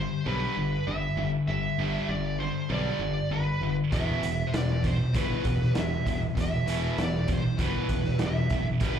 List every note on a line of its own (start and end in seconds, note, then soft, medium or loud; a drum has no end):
0.00 0.23 G2 medium
0.00 0.23 D3 medium
0.00 0.27 C5 medium
0.25 0.45 B1 medium
0.25 0.55 G2 medium
0.25 0.55 D3 medium
0.25 0.55 G3 medium
0.25 0.90 B4 medium
0.56 0.76 G1 medium
0.56 0.84 G2 medium
0.56 0.84 D3 medium
0.87 1.07 G1 medium
0.87 1.15 G2 medium
0.87 1.15 D3 medium
0.87 1.30 E5 medium
1.17 1.36 G1 medium
1.17 1.45 G2 medium
1.17 1.46 D3 medium
1.48 1.67 G1 medium
1.48 1.76 G2 medium
1.48 1.76 D3 medium
1.48 2.11 E5 loud
1.78 1.98 G1 medium
1.78 2.08 G2 medium
1.78 2.08 D3 medium
1.78 2.08 G3 medium
2.08 2.47 G1 medium
2.08 2.37 G2 medium
2.08 2.37 D3 medium
2.08 2.39 D5 medium
2.39 2.67 G2 medium
2.39 2.67 D3 medium
2.39 2.71 C5 medium
2.69 2.89 B1 medium
2.69 2.99 G2 medium
2.69 2.99 D3 medium
2.69 2.99 G3 medium
2.69 3.32 D5 medium
2.99 3.19 G1 medium
2.99 3.29 G2 medium
2.99 3.29 D3 medium
3.31 3.50 G1 medium
3.31 3.59 G2 medium
3.31 3.59 D3 medium
3.31 3.75 B4 medium
3.61 3.81 G1 medium
3.61 3.90 G2 medium
3.61 3.90 D3 medium
3.91 4.12 E1 medium
3.91 4.21 E2 medium
3.91 4.21 B2 medium
3.91 4.22 E3 loud
3.91 4.49 E5 loud
3.91 kick medium
3.91 closed hi-hat medium
4.22 4.42 E1 medium
4.22 4.50 E2 medium
4.22 4.51 B2 medium
4.22 closed hi-hat medium
4.47 4.54 C5 medium
4.52 4.92 E1 medium
4.52 4.81 E2 medium
4.52 4.81 B2 medium
4.52 4.86 D5 medium
4.52 snare loud
4.52 closed hi-hat medium
4.83 5.11 E2 medium
4.83 5.11 B2 medium
4.83 kick medium
4.83 closed hi-hat medium
4.87 5.17 C5 medium
5.13 5.34 G1 medium
5.13 5.43 E2 medium
5.13 5.43 B2 medium
5.13 5.43 E3 medium
5.13 5.79 B4 medium
5.13 kick loud
5.13 closed hi-hat medium
5.44 5.65 E1 medium
5.44 5.72 E2 medium
5.44 5.73 B2 medium
5.44 kick medium
5.44 closed hi-hat medium
5.61 snare soft
5.75 5.96 E1 medium
5.75 6.03 E2 medium
5.75 6.03 B2 medium
5.75 6.20 E5 medium
5.75 snare loud
5.75 closed hi-hat medium
6.06 6.26 E1 medium
6.06 6.34 E2 medium
6.06 6.34 B2 medium
6.06 kick medium
6.06 closed hi-hat medium
6.35 6.56 E1 medium
6.35 6.64 E2 medium
6.35 6.64 B2 medium
6.35 kick loud
6.35 closed hi-hat medium
6.41 7.01 E5 loud
6.66 6.87 E1 medium
6.66 6.96 E2 medium
6.66 6.96 B2 loud
6.66 6.96 E3 loud
6.66 closed hi-hat medium
6.98 7.36 E1 medium
6.98 7.25 E2 medium
6.98 7.25 B2 medium
6.98 snare medium
6.98 closed hi-hat medium
7.02 7.31 D5 medium
7.28 7.56 E2 medium
7.28 7.56 B2 medium
7.28 kick medium
7.28 closed hi-hat medium
7.33 7.59 C5 medium
7.57 7.78 G1 medium
7.57 7.87 E2 medium
7.57 7.87 B2 medium
7.57 7.88 E3 medium
7.57 kick medium
7.57 closed hi-hat medium
7.63 8.18 B4 medium
7.89 8.09 E1 medium
7.89 8.17 E2 medium
7.89 8.17 B2 medium
7.89 kick medium
7.89 closed hi-hat medium
8.05 snare soft
8.19 8.40 E1 medium
8.19 8.48 E2 medium
8.19 8.48 B2 medium
8.19 snare loud
8.19 closed hi-hat medium
8.26 8.66 E5 medium
8.50 8.70 F#1 medium
8.50 8.78 E2 medium
8.50 8.78 B2 medium
8.50 kick medium
8.50 closed hi-hat medium
8.80 8.99 G1 medium
8.80 8.99 G2 medium
8.80 8.99 D3 medium
8.80 8.99 G3 loud
8.80 kick loud
8.80 closed hi-hat medium
8.86 8.99 B4 medium